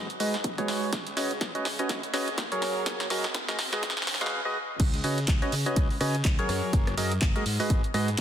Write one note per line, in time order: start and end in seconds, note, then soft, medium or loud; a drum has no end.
0.00 riser medium
0.10 closed hi-hat soft
0.20 0.40 G#2 medium
0.20 0.36 G#3 loud
0.20 0.36 F#4 medium
0.20 0.36 G#4 medium
0.20 0.36 B4 medium
0.20 0.36 D#5 loud
0.20 open hi-hat loud
0.34 snare medium
0.34 closed hi-hat soft
0.44 0.55 G#1 medium
0.44 kick loud
0.44 closed hi-hat medium
0.58 0.91 G#3 medium
0.58 0.91 F#4 medium
0.58 0.91 G#4 medium
0.58 0.91 B4 medium
0.58 0.91 C#5 loud
0.58 kick medium
0.58 closed hi-hat soft
0.68 0.79 G#2 loud
0.68 snare medium
0.68 open hi-hat medium
0.93 1.12 C#2 loud
0.93 kick loud
0.93 snare medium
0.93 closed hi-hat medium
1.07 closed hi-hat soft
1.17 1.37 C#3 medium
1.17 1.32 C#4 medium
1.17 1.32 F#4 medium
1.17 1.32 B4 medium
1.17 1.32 C#5 medium
1.17 1.32 D#5 loud
1.17 snare medium
1.17 open hi-hat loud
1.31 closed hi-hat soft
1.41 1.52 C#2 medium
1.41 kick loud
1.41 snare medium
1.41 closed hi-hat medium
1.55 1.67 C#4 medium
1.55 1.67 F#4 medium
1.55 1.67 B4 medium
1.55 1.67 C#5 medium
1.55 1.67 D#5 loud
1.55 closed hi-hat soft
1.65 1.76 C#3 medium
1.65 snare medium
1.65 open hi-hat medium
1.79 2.01 C#4 medium
1.79 2.01 F#4 medium
1.79 2.01 B4 medium
1.79 2.01 C#5 medium
1.79 2.01 D#5 medium
1.79 closed hi-hat soft
1.89 2.00 C#2 medium
1.89 kick loud
1.89 snare medium
1.89 closed hi-hat medium
2.03 closed hi-hat soft
2.14 2.33 C#3 medium
2.14 2.29 C#4 loud
2.14 2.29 F#4 medium
2.14 2.29 B4 medium
2.14 2.29 C#5 medium
2.14 2.29 D#5 loud
2.14 snare medium
2.14 open hi-hat loud
2.28 closed hi-hat soft
2.38 2.49 C#2 medium
2.38 kick loud
2.38 snare medium
2.38 closed hi-hat medium
2.52 3.08 F#3 loud
2.52 3.08 F#4 medium
2.52 3.08 G#4 medium
2.52 3.08 A#4 medium
2.52 3.08 C#5 loud
2.52 closed hi-hat soft
2.62 2.73 F#2 loud
2.62 snare medium
2.62 open hi-hat loud
2.86 3.06 F#1 loud
2.86 kick loud
2.86 snare medium
2.86 closed hi-hat medium
3.00 snare medium
3.00 closed hi-hat soft
3.10 3.30 F#2 medium
3.10 3.26 F#3 medium
3.10 3.26 F#4 medium
3.10 3.26 G#4 medium
3.10 3.26 A#4 medium
3.10 3.26 D#5 medium
3.10 snare loud
3.10 open hi-hat loud
3.24 snare medium
3.24 closed hi-hat soft
3.34 3.46 F#1 medium
3.34 kick loud
3.34 snare loud
3.34 closed hi-hat medium
3.48 3.58 G#3 medium
3.48 3.57 F#4 medium
3.48 3.57 G#4 medium
3.48 3.58 A#4 medium
3.48 3.58 D#5 medium
3.48 snare medium
3.48 closed hi-hat soft
3.59 3.70 G#2 medium
3.59 snare loud
3.59 open hi-hat loud
3.73 3.95 G#3 medium
3.73 3.95 F#4 medium
3.73 3.95 G#4 medium
3.73 3.95 B4 medium
3.73 3.95 D#5 medium
3.73 snare medium
3.73 closed hi-hat soft
3.83 kick loud
3.83 snare loud
3.83 closed hi-hat medium
3.90 snare medium
3.97 snare medium
3.97 closed hi-hat soft
4.02 snare medium
4.07 4.27 G#2 medium
4.07 snare loud
4.07 open hi-hat loud
4.14 snare medium
4.21 4.41 G#3 medium
4.21 4.41 F#4 medium
4.21 4.41 G#4 medium
4.21 4.41 B4 medium
4.21 4.41 F5 loud
4.21 snare medium
4.21 closed hi-hat soft
4.26 snare medium
4.45 4.58 G#3 medium
4.45 4.58 F#4 medium
4.45 4.58 G#4 medium
4.45 4.58 B4 medium
4.45 4.58 D#5 loud
4.80 5.00 C#2 loud
4.80 kick loud
4.80 closed hi-hat loud
4.80 crash loud
4.94 closed hi-hat soft
5.04 5.24 C#3 medium
5.04 5.19 C#4 medium
5.04 5.19 F#4 medium
5.04 5.19 B4 medium
5.04 5.19 C#5 medium
5.04 5.19 D#5 medium
5.04 open hi-hat loud
5.18 closed hi-hat soft
5.28 5.39 C#2 medium
5.28 kick loud
5.28 clap loud
5.28 closed hi-hat loud
5.42 5.54 C#4 medium
5.42 5.54 F#4 medium
5.42 5.54 B4 medium
5.42 5.54 C#5 medium
5.42 5.54 D#5 medium
5.42 closed hi-hat soft
5.52 5.63 C#3 medium
5.52 open hi-hat loud
5.66 5.88 C#4 medium
5.66 5.88 F#4 medium
5.66 5.88 B4 medium
5.66 5.88 C#5 medium
5.66 5.88 D#5 medium
5.66 closed hi-hat soft
5.76 5.87 C#2 medium
5.76 kick loud
5.76 closed hi-hat loud
5.90 open hi-hat medium
6.01 6.21 C#3 medium
6.01 6.16 C#4 loud
6.01 6.16 F#4 medium
6.01 6.16 B4 medium
6.01 6.16 C#5 medium
6.01 6.16 D#5 loud
6.01 cross-stick medium
6.01 open hi-hat loud
6.15 closed hi-hat soft
6.25 6.36 C#2 medium
6.25 kick loud
6.25 clap loud
6.25 closed hi-hat loud
6.39 6.95 F#3 medium
6.39 6.95 F#4 medium
6.39 6.95 G#4 medium
6.39 6.95 A#4 medium
6.39 6.95 C#5 loud
6.39 closed hi-hat soft
6.49 6.60 F#2 loud
6.49 cross-stick medium
6.49 open hi-hat loud
6.73 6.93 F#1 loud
6.73 kick loud
6.73 closed hi-hat loud
6.87 cross-stick medium
6.87 closed hi-hat soft
6.97 7.17 F#2 medium
6.97 7.13 F#3 medium
6.97 7.13 F#4 medium
6.97 7.13 G#4 medium
6.97 7.13 A#4 medium
6.97 7.13 D#5 loud
6.97 open hi-hat loud
7.11 closed hi-hat soft
7.22 7.33 F#1 medium
7.22 kick loud
7.22 clap loud
7.22 closed hi-hat loud
7.36 7.45 G#3 medium
7.36 7.45 F#4 medium
7.36 7.45 G#4 medium
7.36 7.45 A#4 medium
7.36 7.45 D#5 medium
7.36 closed hi-hat soft
7.46 7.57 G#2 medium
7.46 open hi-hat loud
7.60 7.82 G#3 medium
7.60 7.82 F#4 medium
7.60 7.82 G#4 medium
7.60 7.82 B4 medium
7.60 7.82 D#5 medium
7.60 open hi-hat medium
7.70 7.81 G#1 medium
7.70 kick loud
7.70 closed hi-hat medium
7.84 closed hi-hat soft
7.94 8.14 G#2 medium
7.94 8.10 G#3 loud
7.94 8.10 F#4 medium
7.94 8.10 G#4 medium
7.94 8.10 B4 medium
7.94 8.10 D#5 loud
7.94 cross-stick medium
7.94 open hi-hat loud
8.08 closed hi-hat soft